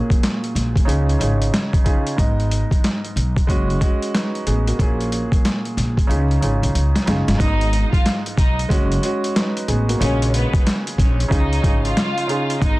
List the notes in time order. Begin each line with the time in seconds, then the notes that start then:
Already playing: A#2 A#3 C#4 F4 F#4 G#4
0.10 kick, closed hi-hat
0.23 snare, clap, closed hi-hat
0.44 closed hi-hat
0.55 A#1, snare, closed hi-hat
0.76 kick, closed hi-hat
0.85 C#2 C#3 C#4 D#4 F4 G#4, closed hi-hat
1.09 closed hi-hat
1.19 G#1 C#3 C#4 D#4 F4 G#4, closed hi-hat
1.42 closed hi-hat
1.54 snare, clap, closed hi-hat
1.73 kick, closed hi-hat
1.84 C#3 C#4 D#4 F4 G#4, kick, closed hi-hat
2.07 closed hi-hat
2.16 G#1 G#2 G#3 B3 D#4 D#5, kick, closed hi-hat
2.40 closed hi-hat
2.51 closed hi-hat
2.71 kick, closed hi-hat
2.84 snare, clap, closed hi-hat
3.05 closed hi-hat
3.16 B1, closed hi-hat
3.37 kick, closed hi-hat
3.47 F#1 G#3 C#4 F#4, kick, closed hi-hat
3.70 closed hi-hat
3.81 G#3 C#4 F#4, kick, closed hi-hat
4.02 closed hi-hat
4.15 D#4 B4, snare, clap, closed hi-hat
4.35 closed hi-hat
4.47 A1 B3 G#4, closed hi-hat
4.67 A#3 F#4, closed hi-hat
4.79 A#1 A#2 A#3 C#4 F4 G#4, kick, closed hi-hat
5.01 closed hi-hat
5.12 closed hi-hat
5.32 kick, closed hi-hat
5.45 snare, clap, closed hi-hat
5.65 closed hi-hat
5.77 A#1, snare, closed hi-hat
5.97 kick, closed hi-hat
6.07 C#2 C#3 C#4 D#4 F4 G#4, closed hi-hat
6.31 closed hi-hat
6.41 G#1 C#3 C#4 D#4 F4 G#4, closed hi-hat
6.63 B1, closed hi-hat
6.75 C#2, closed hi-hat
6.96 snare, closed hi-hat
7.06 F#1 C#3 C#4 D#4 F4 G#4, snare, closed hi-hat
7.28 G1, snare, closed hi-hat
7.38 G#1 G#2 G#3 B3 D#4 D#5, kick, closed hi-hat
7.61 closed hi-hat
7.73 closed hi-hat
7.91 F4 F5, kick, closed hi-hat
8.06 snare, clap, closed hi-hat
8.26 closed hi-hat
8.37 B1 D#4 D#5, kick, closed hi-hat
8.59 closed hi-hat
8.69 F#1 G#3 C#4 F#4, kick, closed hi-hat
8.92 closed hi-hat
9.03 G#3 C#4 F#4, closed hi-hat
9.24 closed hi-hat
9.36 D#4 B4, snare, clap, closed hi-hat
9.57 closed hi-hat
9.68 A1 B3 G#4, closed hi-hat
9.88 A#3 F#4, closed hi-hat
10.00 A#1 C#3 G#3 C#4 F4 G#4 C#5, closed hi-hat
10.22 closed hi-hat
10.34 B3 B4, closed hi-hat
10.54 kick, closed hi-hat
10.67 snare, clap, closed hi-hat
10.87 closed hi-hat
10.98 A#1 C#4 C#5, kick, snare, closed hi-hat
11.20 closed hi-hat
11.28 C#2 C#3 C#4 D#4 F4 G#4 D#5, kick, closed hi-hat
11.53 closed hi-hat
11.62 G#1 C#3 C#4 D#4 F4 G#4, kick, closed hi-hat
11.83 F4 F5, closed hi-hat
11.97 snare, clap, closed hi-hat
12.18 closed hi-hat
12.27 C#3 C#4 D#4 F4 G#4, closed hi-hat
12.50 closed hi-hat
12.60 G#1 G#2 G#3 B3 D#4 D#5, kick, closed hi-hat